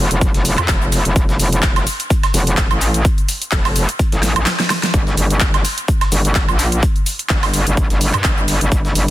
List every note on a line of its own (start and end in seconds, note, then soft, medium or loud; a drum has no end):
0.11 0.32 F1 loud
0.11 closed hi-hat medium
0.11 shaker soft
0.21 kick loud
0.21 closed hi-hat medium
0.21 shaker soft
0.34 0.56 F1 loud
0.34 snare medium
0.34 closed hi-hat medium
0.34 shaker soft
0.45 closed hi-hat medium
0.45 open hi-hat loud
0.45 shaker medium
0.58 0.67 F2 loud
0.58 clap soft
0.58 closed hi-hat medium
0.58 high woodblock medium
0.58 shaker soft
0.68 1.03 F1 loud
0.68 kick loud
0.68 snare loud
0.68 clap loud
0.68 closed hi-hat medium
0.68 shaker soft
0.82 shaker soft
0.92 snare soft
0.92 closed hi-hat medium
0.92 open hi-hat loud
0.92 shaker medium
1.05 1.14 F1 loud
1.05 closed hi-hat medium
1.05 shaker soft
1.16 1.38 F1 loud
1.16 kick loud
1.16 closed hi-hat medium
1.16 shaker soft
1.29 snare medium
1.29 shaker soft
1.40 1.85 F1 medium
1.40 closed hi-hat medium
1.40 open hi-hat loud
1.40 shaker medium
1.53 closed hi-hat medium
1.53 shaker soft
1.63 kick loud
1.63 snare loud
1.63 clap loud
1.63 closed hi-hat medium
1.63 shaker soft
1.76 snare soft
1.76 closed hi-hat medium
1.76 high woodblock medium
1.76 shaker soft
1.87 closed hi-hat medium
1.87 open hi-hat loud
1.87 shaker medium
2.00 closed hi-hat medium
2.00 shaker soft
2.10 kick loud
2.10 closed hi-hat medium
2.10 shaker medium
2.23 snare medium
2.23 closed hi-hat medium
2.23 high woodblock medium
2.23 shaker soft
2.34 2.69 F1 loud
2.34 closed hi-hat medium
2.34 open hi-hat loud
2.34 shaker medium
2.47 closed hi-hat medium
2.47 shaker soft
2.57 kick loud
2.57 snare loud
2.57 clap loud
2.57 closed hi-hat medium
2.57 shaker soft
2.71 3.03 A1 loud
2.71 closed hi-hat soft
2.71 high woodblock medium
2.71 shaker soft
2.81 closed hi-hat medium
2.81 open hi-hat loud
2.81 shaker medium
2.94 closed hi-hat medium
2.94 shaker soft
3.05 kick loud
3.05 closed hi-hat medium
3.05 shaker soft
3.18 closed hi-hat soft
3.18 shaker soft
3.29 closed hi-hat medium
3.29 open hi-hat loud
3.29 shaker medium
3.42 closed hi-hat medium
3.42 shaker soft
3.52 3.87 F1 loud
3.52 kick loud
3.52 snare loud
3.52 clap loud
3.52 closed hi-hat medium
3.52 shaker soft
3.65 snare soft
3.65 open hi-hat medium
3.65 high woodblock medium
3.65 shaker soft
3.76 closed hi-hat medium
3.76 open hi-hat loud
3.76 shaker medium
3.89 closed hi-hat medium
3.89 shaker soft
3.99 kick loud
3.99 closed hi-hat medium
3.99 shaker medium
4.12 4.34 A1 loud
4.12 snare soft
4.12 closed hi-hat medium
4.12 shaker soft
4.23 snare medium
4.23 closed hi-hat medium
4.23 open hi-hat loud
4.23 shaker medium
4.36 4.45 A1 loud
4.36 closed hi-hat medium
4.36 high woodblock medium
4.36 shaker soft
4.46 snare medium
4.46 snare loud
4.46 clap loud
4.46 closed hi-hat medium
4.46 shaker soft
4.60 snare medium
4.60 closed hi-hat soft
4.60 shaker soft
4.70 snare medium
4.70 snare soft
4.70 closed hi-hat medium
4.70 open hi-hat loud
4.70 high woodblock medium
4.70 shaker medium
4.83 snare medium
4.83 closed hi-hat medium
4.83 shaker soft
4.94 5.16 G1 loud
4.94 kick loud
4.94 closed hi-hat medium
4.94 shaker soft
5.07 snare medium
5.07 shaker soft
5.17 5.63 G1 loud
5.17 closed hi-hat medium
5.17 open hi-hat loud
5.17 shaker medium
5.30 closed hi-hat medium
5.30 shaker soft
5.40 kick loud
5.40 snare loud
5.40 clap loud
5.40 closed hi-hat medium
5.40 shaker soft
5.54 snare soft
5.54 closed hi-hat medium
5.54 high woodblock medium
5.54 shaker soft
5.65 closed hi-hat medium
5.65 open hi-hat loud
5.65 shaker medium
5.78 closed hi-hat medium
5.78 shaker soft
5.88 kick loud
5.88 closed hi-hat medium
5.88 shaker soft
6.01 snare medium
6.01 closed hi-hat medium
6.01 high woodblock medium
6.01 shaker soft
6.12 6.47 G1 loud
6.12 closed hi-hat medium
6.12 open hi-hat loud
6.12 shaker medium
6.25 closed hi-hat medium
6.25 shaker soft
6.35 kick loud
6.35 snare loud
6.35 clap loud
6.35 closed hi-hat medium
6.35 shaker soft
6.48 6.81 A#1 medium
6.48 closed hi-hat soft
6.48 high woodblock medium
6.48 shaker soft
6.59 closed hi-hat medium
6.59 open hi-hat loud
6.59 shaker medium
6.72 closed hi-hat medium
6.72 shaker soft
6.83 kick loud
6.83 closed hi-hat medium
6.83 shaker soft
6.96 closed hi-hat soft
6.96 shaker soft
7.06 closed hi-hat medium
7.06 open hi-hat loud
7.06 shaker medium
7.19 closed hi-hat medium
7.19 shaker soft
7.29 7.65 G1 loud
7.29 kick loud
7.29 snare loud
7.29 clap loud
7.29 closed hi-hat medium
7.29 shaker soft
7.43 snare soft
7.43 open hi-hat medium
7.43 high woodblock medium
7.43 shaker soft
7.54 closed hi-hat medium
7.54 open hi-hat loud
7.54 shaker medium
7.67 7.88 G1 medium
7.67 closed hi-hat medium
7.67 shaker soft
7.77 kick loud
7.77 closed hi-hat medium
7.77 shaker soft
7.90 8.12 G1 medium
7.90 snare soft
7.90 closed hi-hat medium
7.90 shaker soft
8.01 closed hi-hat medium
8.01 open hi-hat loud
8.01 shaker medium
8.13 8.23 G2 loud
8.13 clap soft
8.13 closed hi-hat medium
8.13 high woodblock medium
8.13 shaker soft
8.24 8.59 G1 loud
8.24 kick loud
8.24 snare loud
8.24 clap loud
8.24 closed hi-hat medium
8.24 shaker soft
8.38 shaker soft
8.48 snare medium
8.48 closed hi-hat medium
8.48 open hi-hat loud
8.48 shaker medium
8.61 8.70 G1 loud
8.61 closed hi-hat medium
8.61 shaker soft
8.72 8.94 G1 loud
8.72 kick loud
8.72 closed hi-hat medium
8.72 shaker soft
8.85 snare medium
8.85 shaker soft
8.95 9.10 G1 loud
8.95 closed hi-hat medium
8.95 open hi-hat loud
8.95 shaker medium